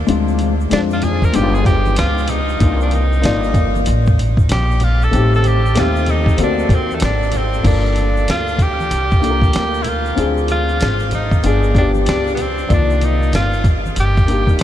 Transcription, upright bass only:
0.08 0.68 D2 loud
0.71 1.20 F2 medium
1.22 muted upright bass stroke soft
1.35 1.95 G1 loud
1.98 2.58 C#2 medium
2.61 3.20 C2 loud
3.24 3.84 G1 loud
3.87 4.47 A1 loud
4.49 5.10 A#1 loud
5.13 5.73 A1 loud
5.76 6.36 D#2 loud
6.38 6.69 D2 loud
6.69 7.00 D#2 medium
7.01 7.62 G#1 loud
7.64 8.25 G1 medium
8.28 8.88 D2 medium
8.91 9.51 C2 loud
9.54 10.15 D2 medium
10.17 10.78 D2 medium
10.81 11.41 G#1 medium
11.44 12.04 G1 loud
12.07 12.67 C#2 medium
12.70 13.30 C2 loud
13.33 13.94 G1 medium
13.97 14.57 G1 medium
14.60 14.63 F#1 medium

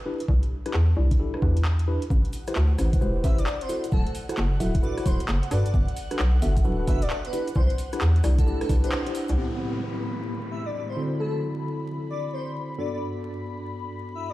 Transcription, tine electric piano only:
0.06 0.21 D4 medium
0.06 0.21 E4 medium
0.06 0.21 G4 medium
0.06 0.21 B4 loud
0.66 0.75 D4 medium
0.66 0.75 E4 medium
0.66 0.75 G4 medium
0.66 0.75 B4 loud
0.97 1.18 D4 medium
0.97 1.17 E4 medium
0.97 1.17 G4 medium
0.97 1.17 D5 medium
1.19 1.32 D4 medium
1.19 1.32 E4 medium
1.19 1.32 G4 medium
1.19 1.32 A4 medium
1.34 1.41 D4 medium
1.34 1.41 E4 medium
1.34 1.41 G4 medium
1.34 1.41 B4 medium
1.42 1.57 D4 medium
1.42 1.57 E4 medium
1.42 1.57 G4 medium
1.42 1.57 B4 medium
1.88 2.03 D4 medium
1.88 2.03 E4 medium
1.88 2.03 G4 medium
1.88 2.03 B4 loud
2.48 2.56 E4 medium
2.48 2.56 G4 medium
2.48 2.56 B4 medium
2.48 2.56 C5 loud
2.79 2.99 E4 medium
2.79 2.99 G4 medium
2.79 2.99 B4 medium
2.79 2.99 C5 medium
3.01 3.14 E4 medium
3.01 3.14 G4 medium
3.01 3.14 B4 medium
3.01 3.14 C5 medium
3.16 3.23 E4 medium
3.16 3.23 G4 medium
3.16 3.23 B4 medium
3.16 3.23 C5 medium
3.24 3.39 E4 medium
3.24 3.39 G4 medium
3.24 3.39 B4 medium
3.24 3.39 C5 medium
3.69 3.84 E4 medium
3.69 3.84 F#4 medium
3.69 3.84 A4 medium
3.69 3.84 C5 loud
4.29 4.38 E4 medium
4.29 4.38 F#4 medium
4.29 4.38 A4 medium
4.29 4.38 C5 loud
4.60 4.81 E4 medium
4.60 4.81 F#4 medium
4.60 4.81 A4 medium
4.60 4.81 E5 medium
4.83 4.95 E4 medium
4.83 4.95 F#4 medium
4.83 4.95 A4 medium
4.83 4.95 B4 medium
4.97 5.05 E4 medium
4.97 5.05 F#4 medium
4.97 5.05 A4 medium
4.97 5.05 C5 medium
5.06 5.21 E4 medium
5.06 5.21 F#4 medium
5.06 5.21 A4 medium
5.06 5.21 C5 medium
5.51 5.66 D4 medium
5.51 5.66 F#4 medium
5.51 5.66 A4 medium
5.51 5.66 B4 loud
6.11 6.20 D4 medium
6.11 6.20 F#4 medium
6.11 6.20 A4 medium
6.11 6.20 B4 loud
6.42 6.63 D4 medium
6.42 6.63 F#4 medium
6.42 6.63 A4 medium
6.42 6.63 E5 medium
6.65 6.77 D4 medium
6.65 6.77 F#4 medium
6.65 6.77 A4 medium
6.65 6.77 B4 medium
6.79 6.86 D4 medium
6.79 6.86 F#4 medium
6.79 6.86 A4 medium
6.79 6.86 B4 medium
6.88 7.02 D4 medium
6.88 7.02 F#4 medium
6.88 7.02 A4 medium
6.88 7.02 B4 medium
7.33 7.48 D4 medium
7.33 7.48 E4 medium
7.33 7.48 G4 medium
7.33 7.48 B4 loud
7.93 8.02 D4 medium
7.93 8.02 E4 medium
7.93 8.02 G4 medium
7.93 8.02 B4 loud
8.24 8.45 D4 medium
8.24 8.45 E4 medium
8.24 8.45 G4 medium
8.24 8.45 D5 medium
8.47 8.59 D4 medium
8.47 8.59 E4 medium
8.47 8.59 G4 medium
8.47 8.59 A4 medium
8.61 8.68 D4 medium
8.61 8.68 E4 medium
8.61 8.68 G4 medium
8.61 8.68 B4 medium
8.69 8.82 D4 medium
8.69 8.82 E4 medium
8.69 8.82 G4 medium
8.69 8.82 B4 medium
8.84 9.02 D4 loud
8.84 9.02 E4 medium
8.84 9.02 G4 loud
8.84 9.02 B4 loud
9.06 9.37 D4 medium
9.06 9.37 E4 medium
9.06 9.37 G4 medium
9.06 9.37 C5 loud
9.38 10.95 A2 medium
9.38 10.95 B3 medium
9.38 10.95 C4 medium
9.38 10.95 E4 medium
9.38 10.95 G4 medium
10.97 12.77 D3 medium
10.97 12.77 C4 medium
10.97 12.77 E4 medium
10.97 12.77 F#4 medium
10.97 12.77 A4 medium
12.79 14.33 G2 medium
12.79 14.33 B3 medium
12.79 14.33 D4 medium
12.79 14.33 F#4 medium
12.79 14.33 A4 medium

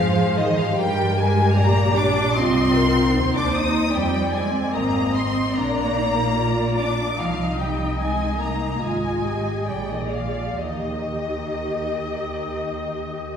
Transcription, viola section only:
0.00 0.74 G#4 medium
0.00 0.76 C5 medium
0.78 2.35 G4 medium
0.78 1.54 A#4 medium
1.56 2.35 D5 medium
2.37 3.16 F4 medium
2.37 2.76 D#5 medium
2.75 3.15 A#4 medium
3.16 3.92 D#4 medium
3.16 3.94 C5 medium
3.94 5.55 C4 medium
3.94 4.72 D5 medium
4.74 5.54 D#5 soft
5.55 5.96 D4 medium
5.55 6.36 D5 soft
5.96 6.37 D#4 medium
6.37 7.19 F4 soft
6.37 7.17 D5 soft
7.18 8.77 D#4 soft
7.18 8.77 D#5 soft
8.82 9.24 F4 soft
8.82 9.66 D#5 soft
9.25 9.68 G4 soft
9.67 10.61 G#4 soft
9.67 10.62 D5 soft
10.62 13.37 G4 soft
10.62 13.37 D#5 soft

